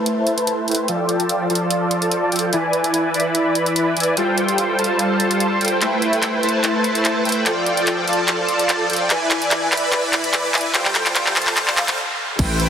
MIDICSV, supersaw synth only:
0, 0, Header, 1, 2, 480
1, 0, Start_track
1, 0, Tempo, 410959
1, 1033, Time_signature, 4, 2, 24, 8
1, 14822, End_track
2, 0, Start_track
2, 0, Title_t, "Supersaw synth"
2, 0, Program_c, 0, 81
2, 0, Note_on_c, 0, 57, 95
2, 0, Note_on_c, 0, 64, 88
2, 0, Note_on_c, 0, 71, 88
2, 0, Note_on_c, 0, 72, 88
2, 0, Note_on_c, 0, 81, 109
2, 766, Note_off_c, 0, 57, 0
2, 766, Note_off_c, 0, 64, 0
2, 766, Note_off_c, 0, 71, 0
2, 766, Note_off_c, 0, 72, 0
2, 766, Note_off_c, 0, 81, 0
2, 793, Note_on_c, 0, 57, 83
2, 793, Note_on_c, 0, 64, 75
2, 793, Note_on_c, 0, 71, 74
2, 793, Note_on_c, 0, 72, 74
2, 793, Note_on_c, 0, 79, 92
2, 1006, Note_off_c, 0, 57, 0
2, 1006, Note_off_c, 0, 64, 0
2, 1006, Note_off_c, 0, 71, 0
2, 1006, Note_off_c, 0, 72, 0
2, 1006, Note_off_c, 0, 79, 0
2, 1033, Note_on_c, 0, 53, 90
2, 1033, Note_on_c, 0, 65, 84
2, 1033, Note_on_c, 0, 69, 87
2, 1033, Note_on_c, 0, 74, 87
2, 1033, Note_on_c, 0, 79, 98
2, 1725, Note_off_c, 0, 65, 0
2, 1726, Note_off_c, 0, 53, 0
2, 1726, Note_off_c, 0, 69, 0
2, 1726, Note_off_c, 0, 74, 0
2, 1726, Note_off_c, 0, 79, 0
2, 1752, Note_on_c, 0, 53, 96
2, 1752, Note_on_c, 0, 65, 94
2, 1752, Note_on_c, 0, 69, 86
2, 1752, Note_on_c, 0, 74, 91
2, 1753, Note_on_c, 0, 81, 108
2, 2685, Note_off_c, 0, 53, 0
2, 2685, Note_off_c, 0, 65, 0
2, 2685, Note_off_c, 0, 69, 0
2, 2685, Note_off_c, 0, 74, 0
2, 2686, Note_off_c, 0, 81, 0
2, 2712, Note_on_c, 0, 53, 83
2, 2712, Note_on_c, 0, 65, 77
2, 2712, Note_on_c, 0, 69, 80
2, 2712, Note_on_c, 0, 74, 73
2, 2712, Note_on_c, 0, 79, 93
2, 2925, Note_off_c, 0, 53, 0
2, 2925, Note_off_c, 0, 65, 0
2, 2925, Note_off_c, 0, 69, 0
2, 2925, Note_off_c, 0, 74, 0
2, 2925, Note_off_c, 0, 79, 0
2, 2950, Note_on_c, 0, 71, 83
2, 2951, Note_on_c, 0, 52, 91
2, 2951, Note_on_c, 0, 64, 83
2, 2951, Note_on_c, 0, 74, 83
2, 2951, Note_on_c, 0, 80, 101
2, 3645, Note_off_c, 0, 52, 0
2, 3645, Note_off_c, 0, 64, 0
2, 3645, Note_off_c, 0, 71, 0
2, 3645, Note_off_c, 0, 74, 0
2, 3645, Note_off_c, 0, 80, 0
2, 3670, Note_on_c, 0, 52, 101
2, 3670, Note_on_c, 0, 64, 92
2, 3670, Note_on_c, 0, 71, 89
2, 3670, Note_on_c, 0, 74, 89
2, 3670, Note_on_c, 0, 83, 113
2, 4604, Note_off_c, 0, 52, 0
2, 4604, Note_off_c, 0, 64, 0
2, 4604, Note_off_c, 0, 71, 0
2, 4604, Note_off_c, 0, 74, 0
2, 4604, Note_off_c, 0, 83, 0
2, 4630, Note_on_c, 0, 52, 80
2, 4630, Note_on_c, 0, 64, 75
2, 4630, Note_on_c, 0, 71, 74
2, 4630, Note_on_c, 0, 74, 77
2, 4630, Note_on_c, 0, 80, 90
2, 4844, Note_off_c, 0, 52, 0
2, 4844, Note_off_c, 0, 64, 0
2, 4844, Note_off_c, 0, 74, 0
2, 4844, Note_off_c, 0, 80, 0
2, 4845, Note_off_c, 0, 71, 0
2, 4870, Note_on_c, 0, 55, 90
2, 4870, Note_on_c, 0, 65, 85
2, 4870, Note_on_c, 0, 69, 85
2, 4870, Note_on_c, 0, 72, 84
2, 4870, Note_on_c, 0, 79, 102
2, 5564, Note_off_c, 0, 55, 0
2, 5564, Note_off_c, 0, 65, 0
2, 5564, Note_off_c, 0, 69, 0
2, 5564, Note_off_c, 0, 72, 0
2, 5564, Note_off_c, 0, 79, 0
2, 5590, Note_on_c, 0, 81, 104
2, 5591, Note_on_c, 0, 55, 98
2, 5591, Note_on_c, 0, 65, 87
2, 5591, Note_on_c, 0, 69, 90
2, 5591, Note_on_c, 0, 72, 93
2, 6524, Note_off_c, 0, 81, 0
2, 6525, Note_off_c, 0, 55, 0
2, 6525, Note_off_c, 0, 65, 0
2, 6525, Note_off_c, 0, 69, 0
2, 6525, Note_off_c, 0, 72, 0
2, 6552, Note_on_c, 0, 69, 77
2, 6552, Note_on_c, 0, 72, 75
2, 6553, Note_on_c, 0, 55, 88
2, 6553, Note_on_c, 0, 65, 74
2, 6553, Note_on_c, 0, 79, 96
2, 6765, Note_off_c, 0, 69, 0
2, 6765, Note_off_c, 0, 72, 0
2, 6766, Note_off_c, 0, 55, 0
2, 6766, Note_off_c, 0, 65, 0
2, 6766, Note_off_c, 0, 79, 0
2, 6792, Note_on_c, 0, 57, 98
2, 6792, Note_on_c, 0, 64, 85
2, 6792, Note_on_c, 0, 71, 85
2, 6792, Note_on_c, 0, 72, 84
2, 6792, Note_on_c, 0, 79, 102
2, 7485, Note_off_c, 0, 57, 0
2, 7485, Note_off_c, 0, 64, 0
2, 7485, Note_off_c, 0, 71, 0
2, 7485, Note_off_c, 0, 72, 0
2, 7485, Note_off_c, 0, 79, 0
2, 7512, Note_on_c, 0, 64, 91
2, 7512, Note_on_c, 0, 71, 94
2, 7512, Note_on_c, 0, 72, 89
2, 7512, Note_on_c, 0, 81, 109
2, 7513, Note_on_c, 0, 57, 96
2, 8445, Note_off_c, 0, 64, 0
2, 8445, Note_off_c, 0, 71, 0
2, 8445, Note_off_c, 0, 72, 0
2, 8445, Note_off_c, 0, 81, 0
2, 8446, Note_off_c, 0, 57, 0
2, 8472, Note_on_c, 0, 79, 90
2, 8473, Note_on_c, 0, 57, 84
2, 8473, Note_on_c, 0, 64, 74
2, 8473, Note_on_c, 0, 71, 77
2, 8473, Note_on_c, 0, 72, 76
2, 8685, Note_off_c, 0, 79, 0
2, 8686, Note_off_c, 0, 57, 0
2, 8686, Note_off_c, 0, 64, 0
2, 8686, Note_off_c, 0, 71, 0
2, 8686, Note_off_c, 0, 72, 0
2, 8712, Note_on_c, 0, 53, 98
2, 8712, Note_on_c, 0, 65, 86
2, 8712, Note_on_c, 0, 69, 81
2, 8712, Note_on_c, 0, 79, 104
2, 8713, Note_on_c, 0, 74, 83
2, 9405, Note_off_c, 0, 65, 0
2, 9405, Note_off_c, 0, 69, 0
2, 9405, Note_off_c, 0, 79, 0
2, 9406, Note_off_c, 0, 53, 0
2, 9406, Note_off_c, 0, 74, 0
2, 9431, Note_on_c, 0, 65, 90
2, 9431, Note_on_c, 0, 81, 108
2, 9432, Note_on_c, 0, 53, 96
2, 9432, Note_on_c, 0, 69, 91
2, 9432, Note_on_c, 0, 74, 90
2, 10365, Note_off_c, 0, 53, 0
2, 10365, Note_off_c, 0, 65, 0
2, 10365, Note_off_c, 0, 69, 0
2, 10365, Note_off_c, 0, 74, 0
2, 10365, Note_off_c, 0, 81, 0
2, 10392, Note_on_c, 0, 53, 86
2, 10392, Note_on_c, 0, 65, 76
2, 10392, Note_on_c, 0, 74, 77
2, 10392, Note_on_c, 0, 79, 90
2, 10393, Note_on_c, 0, 69, 78
2, 10605, Note_off_c, 0, 53, 0
2, 10605, Note_off_c, 0, 65, 0
2, 10605, Note_off_c, 0, 74, 0
2, 10605, Note_off_c, 0, 79, 0
2, 10606, Note_off_c, 0, 69, 0
2, 10632, Note_on_c, 0, 52, 95
2, 10632, Note_on_c, 0, 64, 84
2, 10632, Note_on_c, 0, 71, 86
2, 10632, Note_on_c, 0, 74, 87
2, 10632, Note_on_c, 0, 80, 103
2, 11325, Note_off_c, 0, 64, 0
2, 11325, Note_off_c, 0, 71, 0
2, 11325, Note_off_c, 0, 80, 0
2, 11326, Note_off_c, 0, 52, 0
2, 11326, Note_off_c, 0, 74, 0
2, 11351, Note_on_c, 0, 52, 99
2, 11352, Note_on_c, 0, 64, 91
2, 11352, Note_on_c, 0, 71, 96
2, 11352, Note_on_c, 0, 74, 96
2, 11352, Note_on_c, 0, 83, 112
2, 12285, Note_off_c, 0, 52, 0
2, 12285, Note_off_c, 0, 64, 0
2, 12285, Note_off_c, 0, 71, 0
2, 12285, Note_off_c, 0, 74, 0
2, 12285, Note_off_c, 0, 83, 0
2, 12311, Note_on_c, 0, 52, 82
2, 12311, Note_on_c, 0, 74, 81
2, 12311, Note_on_c, 0, 80, 88
2, 12312, Note_on_c, 0, 64, 75
2, 12312, Note_on_c, 0, 71, 79
2, 12525, Note_off_c, 0, 52, 0
2, 12525, Note_off_c, 0, 64, 0
2, 12525, Note_off_c, 0, 71, 0
2, 12525, Note_off_c, 0, 74, 0
2, 12525, Note_off_c, 0, 80, 0
2, 12551, Note_on_c, 0, 65, 84
2, 12552, Note_on_c, 0, 55, 95
2, 12552, Note_on_c, 0, 69, 87
2, 12552, Note_on_c, 0, 72, 88
2, 12552, Note_on_c, 0, 79, 102
2, 13245, Note_off_c, 0, 55, 0
2, 13245, Note_off_c, 0, 65, 0
2, 13245, Note_off_c, 0, 69, 0
2, 13245, Note_off_c, 0, 72, 0
2, 13245, Note_off_c, 0, 79, 0
2, 13271, Note_on_c, 0, 55, 105
2, 13271, Note_on_c, 0, 65, 92
2, 13271, Note_on_c, 0, 69, 96
2, 13271, Note_on_c, 0, 72, 93
2, 13271, Note_on_c, 0, 81, 108
2, 13729, Note_off_c, 0, 55, 0
2, 13729, Note_off_c, 0, 65, 0
2, 13729, Note_off_c, 0, 69, 0
2, 13729, Note_off_c, 0, 72, 0
2, 13729, Note_off_c, 0, 81, 0
2, 13751, Note_on_c, 0, 55, 81
2, 13751, Note_on_c, 0, 65, 69
2, 13751, Note_on_c, 0, 69, 72
2, 13751, Note_on_c, 0, 72, 70
2, 13751, Note_on_c, 0, 77, 83
2, 13992, Note_off_c, 0, 55, 0
2, 13992, Note_off_c, 0, 65, 0
2, 13992, Note_off_c, 0, 69, 0
2, 13992, Note_off_c, 0, 72, 0
2, 13992, Note_off_c, 0, 77, 0
2, 14473, Note_on_c, 0, 57, 96
2, 14473, Note_on_c, 0, 64, 88
2, 14473, Note_on_c, 0, 71, 87
2, 14473, Note_on_c, 0, 79, 107
2, 14474, Note_on_c, 0, 72, 89
2, 14822, Note_off_c, 0, 57, 0
2, 14822, Note_off_c, 0, 64, 0
2, 14822, Note_off_c, 0, 71, 0
2, 14822, Note_off_c, 0, 72, 0
2, 14822, Note_off_c, 0, 79, 0
2, 14822, End_track
0, 0, End_of_file